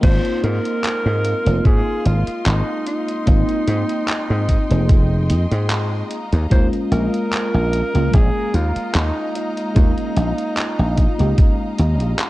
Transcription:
0.01 G#1 G#3 A#3 C4 D#4 F4 C5 D#5 F5 C6, kick, closed hi-hat, crash
0.25 closed hi-hat
0.44 G#2 A#4, closed hi-hat
0.65 closed hi-hat
0.84 clap, closed hi-hat
1.06 G#2
1.25 closed hi-hat
1.45 F1 A#3 C4 D#4 F4, closed hi-hat
1.65 G#2 G#4, kick, closed hi-hat
2.06 G#1 F4, closed hi-hat
2.27 muted slap bass stroke, closed hi-hat
2.46 G#1 D#4, clap, closed hi-hat
2.87 D#4, closed hi-hat
3.08 closed hi-hat
3.26 G#1 A#3 C4 D#4 F4 G5, kick, closed hi-hat
3.49 closed hi-hat
3.68 G#2, closed hi-hat
3.89 closed hi-hat
4.08 clap, closed hi-hat
4.30 G#2
4.49 kick, closed hi-hat
4.69 F1 A#3 C4 D#4 G#4, closed hi-hat
4.89 kick, closed hi-hat
5.30 F2, closed hi-hat
5.52 G#2, closed hi-hat
5.70 clap, closed hi-hat
6.11 F5 A#5, closed hi-hat
6.33 D#2, closed hi-hat
6.50 D#2 G#3 A#3 C#4 F4 C5, kick, closed hi-hat
6.73 closed hi-hat
6.92 A#1 A#4, closed hi-hat
7.14 closed hi-hat
7.33 clap, closed hi-hat
7.54 A#1
7.73 closed hi-hat
7.94 C#2 G#3 A#3 C#4 F4, closed hi-hat
8.13 A#1 G#4, kick, closed hi-hat
8.54 D#2 F4, closed hi-hat
8.76 muted slap bass stroke, closed hi-hat
8.95 D#2 D#4, clap, closed hi-hat
9.35 D#4, closed hi-hat
9.57 closed hi-hat
9.75 D#2 G#3 A#3 C#4 F4, kick, closed hi-hat
9.98 closed hi-hat
10.16 A#1, closed hi-hat
10.38 closed hi-hat
10.57 clap, closed hi-hat
10.79 A#1
10.97 kick, closed hi-hat
11.18 C#2 G#3 A#3 C#4 G4, closed hi-hat
11.38 kick, closed hi-hat
11.79 D#2, closed hi-hat
12.00 A#1, closed hi-hat
12.19 clap, closed hi-hat

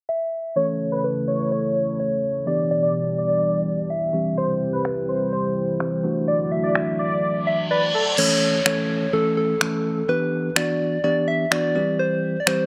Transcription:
0.09 E5
0.56 C#3 E3 A3 C#4 E4 A4 C#5
0.92 B4
1.04 B4
1.28 C#5
1.52 C#5
2.00 C#5
2.46 B2 E3 G3 B3 D4 G4 D5
2.71 D5
2.82 D5
3.18 D5
3.90 E5
4.13 C3 E3 G3 C4 E4 G4
4.37 C5
4.73 B4
4.85 B4, finger snap
5.09 C5
5.33 C5
5.80 E3 G3 C4 G4, finger snap
6.03 D3 E3 F#3 A3 D4 E4 F#4
6.28 D5
6.52 E5
6.63 D5
6.75 finger snap
6.99 D5
7.23 reverse cymbal
7.47 E5
7.70 B4 D5
7.94 A4
8.18 E3 A3 C#4 A4 C#5, crash, downlifter
8.66 E3 A3 C#4 A4 C#5, finger snap
9.13 E3 A3 C#4 A4
9.37 A4
9.61 E3 A3 C#4 A4, finger snap
10.08 E3 B3 D4 G4 B4
10.56 E3 B3 D4 F#4 D5, finger snap
11.04 E3 B3 D4 G4 D5
11.28 E5
11.51 E3 B3 D4 F#4 D5, finger snap
11.75 E3 G3 C4 G4
11.99 C5
12.40 D5
12.47 E3 G3 C4 G4 C5, finger snap

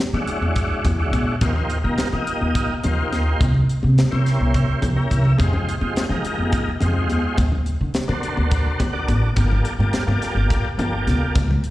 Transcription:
0.00 snare
0.13 E3 G#3 D4 E4 F#4 C#5, muted conga, low conga
0.28 closed hi-hat
0.42 E2, high conga
0.56 kick, closed hi-hat
0.71 muted upright bass stroke
0.85 E2, kick, closed hi-hat, muted conga, low conga
0.98 G#3 D4 E4 F#4 C#5
1.13 A#1, kick, closed hi-hat, high conga
1.41 D#2 A#3 D#4 F4 G4 C5, kick, closed hi-hat, muted conga
1.56 low conga
1.70 closed hi-hat, low conga
1.84 D#3 A#3 D#4 F4 G4 A#4, high conga
1.98 snare, closed hi-hat
2.12 D#3 A#3 D#4 F4 G4 D#5, muted conga, low conga
2.27 closed hi-hat
2.41 D#2, high conga
2.55 kick, closed hi-hat
2.70 muted upright bass stroke
2.83 D#2 A#3 D#4 F4 G4 C5, closed hi-hat, muted conga, low conga
3.12 D2, snare, closed hi-hat, high conga
3.40 C2, kick, closed hi-hat, muted conga
3.54 low conga
3.69 closed hi-hat
3.83 C3, high conga, low conga
3.98 snare, closed hi-hat
4.10 C3 A#3 C#4 E4 G4 C5, muted conga, low conga
4.26 snare, closed hi-hat, low conga
4.41 C2, high conga
4.54 kick, closed hi-hat
4.69 muted upright bass stroke
4.82 C2 G5, kick, closed hi-hat, muted conga, low conga
4.95 A#3 C#4 E4 G4 A#4, high conga
5.10 C2 E5, kick, closed hi-hat, low conga
5.25 low conga
5.37 F2 G#3 D#4 F4 G4 C5, kick, closed hi-hat, muted conga
5.53 low conga
5.69 closed hi-hat
5.80 F3 G#3 D#4 F4 G4 C5, high conga
5.96 snare, closed hi-hat
6.09 F3 G#3 D#4 F4 G4 A#4, muted conga, low conga
6.25 closed hi-hat
6.38 F2, high conga
6.52 kick, closed hi-hat
6.67 muted upright bass stroke
6.80 F2 G#3 D#4 F4 G4 C5, closed hi-hat, muted conga, low conga
7.10 D#2, closed hi-hat, high conga
7.38 D2, kick, closed hi-hat, muted conga
7.52 low conga
7.66 closed hi-hat, low conga
7.81 D3
7.94 snare, closed hi-hat
8.08 D3 A#3 D4 F#4 A4 C5, muted conga, low conga
8.23 closed hi-hat
8.37 D2, high conga
8.51 kick, closed hi-hat
8.66 muted upright bass stroke
8.79 D2 F#5, kick, closed hi-hat, muted conga, low conga
8.93 A#3 D4 F#4 A4 D5
9.07 A1 D5, kick, closed hi-hat, high conga
9.36 G1 A#3 F4 G4 A4 D5, kick, closed hi-hat, muted conga
9.52 low conga
9.65 closed hi-hat, low conga
9.79 G2 A#3 F4 G4 A4 D5, high conga
9.93 snare, closed hi-hat
10.07 G2 A#3 F4 G4 A4 D5, muted conga, low conga
10.22 snare, closed hi-hat
10.35 G1, high conga
10.50 kick, closed hi-hat
10.64 muted upright bass stroke
10.78 G1 A#3 F4 G4 A4 D5, closed hi-hat, muted conga, low conga
11.07 D2, snare, closed hi-hat, high conga
11.35 C#2, kick, closed hi-hat, muted conga
11.51 low conga
11.64 closed hi-hat

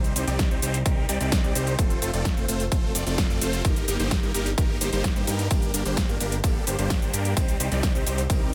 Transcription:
Already playing: C2 G3 C4 D#4 G4 C5
0.04 closed hi-hat, shaker
0.16 C2 G3 C4 D#4 G4 C5, open hi-hat, shaker
0.27 C2 G3 C4 D#4 G4 D5, snare, closed hi-hat, shaker
0.39 kick, snare, closed hi-hat, shaker
0.51 C2 G3 C4 D#4 G4 C5, shaker
0.62 C2 G3 C4 D#4 G4 C5, open hi-hat, shaker
0.74 closed hi-hat, shaker
0.86 C2 G3 C4 D#4 G4 A#4, kick, closed hi-hat, shaker
1.09 C2 G3 C4 D#4 G4 D5, open hi-hat, shaker
1.21 C2 G3 C4 D#4 G4 D5, closed hi-hat, shaker
1.32 kick, snare, closed hi-hat, shaker
1.44 C2 G3 C4 D#4 G4 D5, shaker
1.55 C2 G3 C4 D#4 G4 C5, open hi-hat, shaker
1.67 closed hi-hat, shaker
1.79 F1 A3 C4 F4 A4 C5, kick, closed hi-hat, shaker
1.90 closed hi-hat, shaker
2.02 F1 A3 C4 F4 A4 C5, open hi-hat, shaker
2.14 F1 A3 C4 F4 A4 D5, closed hi-hat, shaker
2.25 kick, snare, closed hi-hat, shaker
2.37 F1 A3 C4 F4 A4 C5, shaker
2.48 F1 A3 C4 F4 A4 C5, open hi-hat, shaker
2.60 closed hi-hat, shaker
2.72 F1 A3 C4 F4 A4 C5, kick, closed hi-hat, shaker
2.95 F1 A3 C4 F4 A4 D5, open hi-hat, shaker
3.07 F1 A3 C4 F4 A4 D5, closed hi-hat, shaker
3.18 kick, snare, closed hi-hat, shaker
3.30 F2 A3 C4 F4 A4 D5, shaker
3.41 F1 A3 C4 F4 A4 C5, open hi-hat, shaker
3.53 closed hi-hat, shaker
3.65 G1 G3 A#3 D#4 G4 A#4, kick, closed hi-hat, shaker
3.76 closed hi-hat, shaker
3.88 G1 G3 A#3 D#4 G4 A#4, open hi-hat, shaker
3.99 G1 G3 A#3 D#4 G4 C5, snare, closed hi-hat, shaker
4.11 kick, snare, closed hi-hat, shaker
4.23 G1 G3 A#3 D#4 G4 A#4, shaker
4.34 G1 G3 A#3 D#4 G4 A#4, open hi-hat, shaker
4.46 closed hi-hat, shaker
4.58 G1 G3 A#3 D#4 G4 A#4, kick, closed hi-hat, shaker
4.81 G1 G3 A#3 D#4 G4 C5, open hi-hat, shaker
4.93 G1 G3 A#3 D#4 G4 C5, closed hi-hat, shaker
5.04 kick, snare, closed hi-hat, shaker
5.16 G2 G3 A#3 D#4 G4 C5, shaker
5.27 G2 G3 A#3 D#4 G4 A#4, open hi-hat, shaker
5.39 closed hi-hat, shaker
5.51 G1 G3 A#3 D4 G4 A#4, kick, closed hi-hat, ride, shaker
5.62 closed hi-hat, shaker
5.74 G1 G3 A#3 D4 G4 A#4, open hi-hat, shaker
5.86 G1 G3 A#3 D4 G4 C5, closed hi-hat, shaker
5.97 kick, snare, closed hi-hat, ride, shaker
6.09 G1 G3 A#3 D4 G4 A#4, shaker
6.20 G1 G3 A#3 D4 G4 A#4, open hi-hat, shaker
6.32 closed hi-hat, shaker
6.44 G1 G3 A#3 D4 G4 A4, kick, closed hi-hat, ride, shaker
6.67 G1 G3 A#3 D4 G4 C5, open hi-hat, shaker
6.79 G1 G3 A#3 D4 G4 C5, closed hi-hat, shaker
6.90 kick, snare, closed hi-hat, ride, shaker
7.02 G1 G3 A#3 D4 G4 C5, shaker
7.13 G2 G3 A#3 D4 G4 A#4, open hi-hat, shaker
7.25 closed hi-hat, shaker
7.37 C2 G3 C4 D#4 G4 C5, kick, closed hi-hat, ride, shaker
7.48 closed hi-hat, shaker
7.60 C2 G3 C4 D#4 G4 C5, open hi-hat, shaker
7.72 C2 G3 C4 D#4 G4 D5, snare, closed hi-hat, shaker
7.83 kick, snare, closed hi-hat, ride, shaker
7.95 C2 G3 C4 D#4 G4 C5, shaker
8.06 C2 G3 C4 D#4 G4 C5, open hi-hat, shaker
8.18 closed hi-hat, shaker
8.30 C2 G3 C4 D#4 G4 A#4, kick, closed hi-hat, ride, shaker

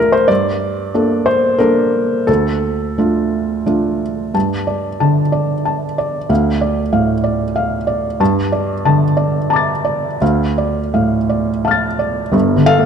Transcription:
Already playing: D2 A3 D4 F4 A4 A#4 D5
0.12 C5
0.28 G2 D5
0.94 A#3 D4 A4
1.26 C5
1.58 A#3 D4 A4 A#4
2.27 D2 A4
2.98 A3 D4 F4
3.66 A3 D4 F4
4.34 G2 A5
4.67 D5
5.00 D3 A5
5.32 D5
5.65 A5
5.98 D5
6.29 D2 F5
6.61 D5
6.93 A2 F5
7.24 D5
7.56 F5
7.87 D5
8.20 G2 A5
8.52 D5
8.85 D3 A5
9.17 D5
9.50 A5 A#5 D6
9.56 A6
9.85 D5
10.21 D2 F5
10.58 D5
10.94 A2 F5
11.29 D5
11.65 F5 A5 F6
11.71 A6
11.99 D5
12.32 G1 G2
12.56 D3
12.66 A4 F5
12.78 A#3

